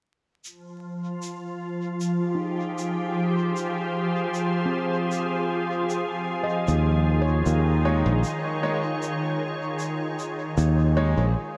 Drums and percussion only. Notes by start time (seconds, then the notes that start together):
0.45 shaker
1.23 shaker
2.01 shaker
2.78 shaker
3.57 shaker
4.34 shaker
5.12 shaker
5.90 shaker
6.68 shaker
7.46 shaker
8.24 shaker
9.03 shaker
9.79 shaker
10.19 shaker
10.58 shaker